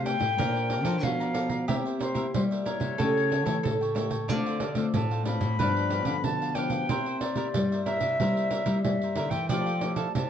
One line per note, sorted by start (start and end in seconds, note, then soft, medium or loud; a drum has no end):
0.00 0.15 C3 medium
0.00 0.34 C3 medium
0.00 0.23 A3 medium
0.00 0.23 E4 soft
0.00 0.40 F4 medium
0.00 0.24 G4 medium
0.04 0.37 A4 medium
0.04 0.37 C5 medium
0.04 0.37 F5 medium
0.04 1.05 G5 loud
0.04 pandeiro medium
0.20 0.34 A2 medium
0.20 pandeiro medium
0.36 0.85 A#2 loud
0.36 0.99 A#3 medium
0.36 0.81 D4 medium
0.36 1.73 A#4 medium
0.36 0.81 C5 medium
0.36 0.70 D5 medium
0.36 0.71 F5 medium
0.36 pandeiro medium
0.41 0.71 A#5 medium
0.56 pandeiro soft
0.70 0.84 A4 medium
0.70 0.84 D5 medium
0.70 0.85 F5 medium
0.70 0.85 A#5 medium
0.70 pandeiro medium
0.83 1.04 F3 loud
0.83 1.29 D4 medium
0.83 0.95 A4 medium
0.83 1.29 C5 medium
0.83 0.95 D5 medium
0.83 0.95 F5 medium
0.83 0.96 A#5 medium
0.83 pandeiro medium
1.03 1.69 B2 medium
1.03 1.65 F3 medium
1.03 1.67 F5 loud
1.03 pandeiro medium
1.20 1.34 D5 soft
1.20 1.34 F5 soft
1.20 1.35 A#5 soft
1.20 pandeiro soft
1.34 1.54 D4 medium
1.34 1.50 A4 medium
1.34 1.55 A4 medium
1.34 1.55 C5 medium
1.34 1.50 D5 medium
1.34 1.49 F5 medium
1.34 1.48 A#5 medium
1.34 pandeiro medium
1.49 1.67 D5 soft
1.49 1.66 F5 soft
1.49 1.66 A#5 medium
1.49 pandeiro medium
1.67 2.31 C3 medium
1.67 2.24 C3 medium
1.67 2.12 A#3 medium
1.67 1.83 E4 medium
1.67 2.13 E4 medium
1.67 2.98 G4 medium
1.67 2.13 G4 medium
1.67 1.84 A#4 medium
1.67 1.84 C5 medium
1.67 1.75 E5 loud
1.67 1.85 E5 medium
1.67 pandeiro medium
1.86 1.99 A#4 soft
1.86 2.00 C5 soft
1.86 2.00 E5 medium
1.86 pandeiro soft
1.99 2.13 E4 soft
1.99 2.14 A#4 soft
1.99 2.30 C5 medium
1.99 2.15 C5 soft
1.99 2.15 E5 soft
1.99 pandeiro medium
2.14 2.60 A#3 medium
2.14 2.25 E4 medium
2.14 2.61 E4 medium
2.14 2.61 G4 medium
2.14 2.25 A#4 medium
2.14 2.26 C5 medium
2.14 2.26 E5 medium
2.14 pandeiro medium
2.33 2.96 G3 medium
2.33 2.76 G3 loud
2.33 2.41 C5 medium
2.33 pandeiro medium
2.51 2.65 A#4 soft
2.51 2.66 C5 soft
2.51 2.66 E5 medium
2.51 pandeiro soft
2.64 2.93 A#3 medium
2.64 2.97 E4 medium
2.64 2.94 E4 medium
2.64 2.94 G4 medium
2.64 2.98 A#4 medium
2.64 3.92 C#5 loud
2.64 2.98 E5 medium
2.64 pandeiro medium
2.80 2.95 C3 medium
2.80 pandeiro medium
2.98 3.61 C#3 medium
2.98 3.45 C#3 medium
2.98 3.30 A3 soft
2.98 3.29 E4 medium
2.98 3.30 E4 medium
2.98 3.30 G4 medium
2.98 3.62 A4 medium
2.98 3.30 A4 medium
2.98 3.30 C#5 medium
2.98 3.31 G5 medium
2.98 pandeiro medium
3.17 pandeiro soft
3.30 3.44 E4 medium
3.30 3.44 A4 medium
3.30 3.45 C#5 medium
3.30 3.46 G5 medium
3.30 pandeiro medium
3.45 3.64 E3 loud
3.45 3.90 A3 medium
3.45 3.56 E4 medium
3.45 3.91 E4 medium
3.45 3.91 G4 medium
3.45 3.56 A4 medium
3.45 3.56 C#5 medium
3.45 3.56 G5 medium
3.45 pandeiro medium
3.63 4.29 A2 loud
3.63 4.26 C#3 medium
3.63 4.31 A4 medium
3.63 pandeiro medium
3.81 3.94 A4 soft
3.81 3.95 C#5 medium
3.81 3.95 G5 medium
3.81 pandeiro soft
3.95 4.15 A3 medium
3.95 4.11 E4 medium
3.95 4.16 E4 medium
3.95 4.16 G4 medium
3.95 4.11 A4 medium
3.95 4.10 C#5 medium
3.95 4.09 G5 medium
3.95 pandeiro medium
4.10 4.28 A4 soft
4.10 4.27 C#5 soft
4.10 4.27 G5 medium
4.10 pandeiro medium
4.28 4.85 D3 medium
4.28 4.91 D3 medium
4.28 4.60 A3 medium
4.28 4.60 C4 medium
4.28 4.44 D4 medium
4.28 4.60 F4 medium
4.28 4.44 A4 medium
4.28 4.45 C5 medium
4.28 5.59 D5 loud
4.28 4.45 F5 medium
4.28 pandeiro medium
4.46 4.60 A4 soft
4.46 4.61 C5 soft
4.46 4.61 F5 medium
4.46 pandeiro soft
4.60 4.74 D4 soft
4.60 4.75 A4 soft
4.60 4.76 C5 soft
4.60 4.76 F5 medium
4.60 pandeiro medium
4.75 5.21 A3 medium
4.75 5.21 C4 medium
4.75 4.86 D4 medium
4.75 5.21 F4 medium
4.75 4.86 A4 medium
4.75 4.87 C5 medium
4.75 4.87 F5 medium
4.75 pandeiro medium
4.94 5.36 A2 loud
4.94 5.56 A2 medium
4.94 5.25 A5 medium
4.94 pandeiro medium
5.11 5.25 A4 soft
5.11 5.26 C5 soft
5.11 5.26 F5 soft
5.11 pandeiro soft
5.25 5.54 A3 medium
5.25 5.54 C4 medium
5.25 5.58 D4 medium
5.25 5.55 F4 medium
5.25 5.58 A4 medium
5.25 5.58 C5 medium
5.25 5.59 F5 medium
5.25 6.25 B5 loud
5.25 pandeiro medium
5.41 5.56 A2 medium
5.41 pandeiro medium
5.59 6.06 G2 medium
5.59 6.22 G2 medium
5.59 6.04 F3 medium
5.59 6.04 B3 medium
5.59 5.90 D4 medium
5.59 6.04 D4 medium
5.59 5.91 G4 medium
5.59 6.86 B4 medium
5.59 5.92 B4 medium
5.59 5.92 F5 medium
5.59 pandeiro medium
5.77 pandeiro soft
5.90 6.04 D4 medium
5.90 6.05 G4 medium
5.90 6.05 B4 medium
5.90 6.05 F5 medium
5.90 pandeiro medium
6.05 6.25 D3 loud
6.05 6.51 F3 medium
6.05 6.51 B3 medium
6.05 6.16 D4 medium
6.05 6.51 D4 medium
6.05 6.16 G4 medium
6.05 6.17 B4 medium
6.05 6.17 F5 medium
6.05 pandeiro medium
6.24 6.90 B2 medium
6.24 6.87 D3 medium
6.24 6.56 A5 loud
6.24 pandeiro medium
6.42 6.55 G4 soft
6.42 6.56 B4 soft
6.42 6.56 F5 soft
6.42 pandeiro soft
6.54 6.84 F3 medium
6.54 6.84 B3 medium
6.54 6.71 D4 medium
6.54 6.84 D4 medium
6.54 6.72 G4 medium
6.54 6.71 B4 medium
6.54 6.69 F5 medium
6.54 7.19 G5 loud
6.54 pandeiro medium
6.70 6.88 G4 medium
6.70 6.88 B4 medium
6.70 6.87 F5 medium
6.70 pandeiro medium
6.89 7.45 C3 loud
6.89 7.52 C3 medium
6.89 7.34 A#3 medium
6.89 7.05 E4 medium
6.89 7.34 E4 medium
6.89 7.34 G4 medium
6.89 7.05 A#4 medium
6.89 9.14 C5 medium
6.89 7.06 C5 medium
6.89 7.06 E5 medium
6.89 pandeiro medium
7.06 7.21 A#4 soft
7.06 7.21 C5 soft
7.06 7.22 E5 medium
7.06 pandeiro soft
7.20 7.35 E4 soft
7.20 7.36 A#4 soft
7.20 7.36 C5 medium
7.20 7.82 D5 medium
7.20 7.36 E5 soft
7.20 pandeiro medium
7.36 7.81 A#3 medium
7.36 7.81 E4 medium
7.36 7.47 E4 medium
7.36 7.81 G4 medium
7.36 7.47 A#4 medium
7.36 7.47 C5 medium
7.36 7.47 E5 medium
7.36 pandeiro medium
7.54 8.17 G2 medium
7.54 7.97 G3 medium
7.54 pandeiro medium
7.72 7.85 A#4 soft
7.72 7.86 C5 soft
7.72 7.87 E5 medium
7.72 pandeiro soft
7.84 8.06 A#3 medium
7.84 8.18 E4 medium
7.84 8.06 E4 medium
7.84 8.06 G4 medium
7.84 8.18 A#4 medium
7.84 8.19 C5 medium
7.84 8.80 E5 loud
7.84 pandeiro medium
7.88 8.19 E5 medium
8.01 8.16 C3 medium
8.01 pandeiro medium
8.20 8.82 C3 medium
8.20 8.62 G3 medium
8.20 8.64 A#3 medium
8.20 8.49 E4 medium
8.20 8.64 E4 medium
8.20 8.64 G4 medium
8.20 8.50 A#4 medium
8.20 8.51 C5 medium
8.20 8.52 E5 medium
8.20 pandeiro medium
8.37 pandeiro soft
8.50 8.65 E4 medium
8.50 8.65 A#4 medium
8.50 8.65 C5 medium
8.50 8.66 E5 medium
8.50 pandeiro medium
8.66 8.81 G3 medium
8.66 9.12 A#3 medium
8.66 8.76 E4 medium
8.66 9.12 E4 medium
8.66 9.12 G4 medium
8.66 8.77 A#4 medium
8.66 8.77 C5 medium
8.66 8.77 E5 medium
8.66 pandeiro medium
8.83 9.47 G2 medium
8.83 9.18 G3 medium
8.83 9.31 E5 medium
8.83 pandeiro medium
9.02 9.16 A#4 soft
9.02 9.17 C5 soft
9.02 9.17 E5 soft
9.02 pandeiro soft
9.16 9.31 D3 medium
9.16 9.36 A#3 medium
9.16 9.32 E4 medium
9.16 9.37 E4 medium
9.16 9.37 G4 medium
9.16 9.32 A#4 medium
9.16 9.30 C5 medium
9.16 9.30 E5 medium
9.16 pandeiro medium
9.30 9.51 E3 medium
9.30 9.49 A#4 soft
9.30 9.48 C5 medium
9.30 9.48 E5 medium
9.30 9.48 G5 loud
9.30 pandeiro medium
9.48 10.06 F3 loud
9.48 10.13 F3 medium
9.48 9.70 A3 medium
9.48 9.65 E4 medium
9.48 9.70 E4 medium
9.48 9.70 G4 medium
9.48 9.66 A4 medium
9.48 9.66 C5 medium
9.48 10.30 D5 loud
9.48 9.94 G5 loud
9.48 pandeiro medium
9.53 9.65 F5 medium
9.66 9.81 A4 soft
9.66 9.82 C5 soft
9.66 9.81 F5 medium
9.66 pandeiro soft
9.81 10.13 A3 medium
9.81 9.95 E4 soft
9.81 10.14 E4 medium
9.81 10.14 G4 medium
9.81 9.95 A4 soft
9.81 9.96 C5 soft
9.81 9.96 F5 soft
9.81 pandeiro medium
9.95 10.07 E4 medium
9.95 10.07 A4 medium
9.95 10.07 C5 medium
9.95 10.07 F5 medium
9.95 10.12 A5 loud
9.95 pandeiro medium
10.14 10.30 C3 loud
10.14 10.30 C3 medium
10.14 10.30 A5 loud
10.14 pandeiro medium